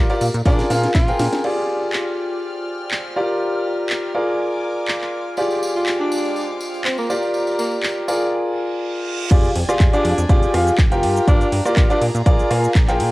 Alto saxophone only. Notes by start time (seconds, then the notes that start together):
0.46 D4
0.95 F4
5.75 F4
6.00 D4
6.85 C4
6.98 A#3
7.59 A#3
9.69 F4
9.93 D4
11.28 D4
11.65 A#3
11.90 D4